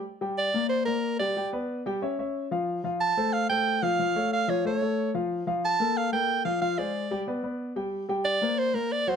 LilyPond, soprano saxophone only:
\new Staff \with { instrumentName = "Soprano saxophone" } { \time 4/4 \key g \minor \tempo 4 = 183 r4 d''4 c''8 bes'4 d''8~ | d''8 r2. r8 | r4 a''4 f''8 g''4 f''8~ | f''4 f''8 cis''8 cis''4. r8 |
r4 a''4 f''8 g''4 f''8 | f''8 d''4. r2 | r4 d''4 c''8 bes'8 d''8 c''8 | }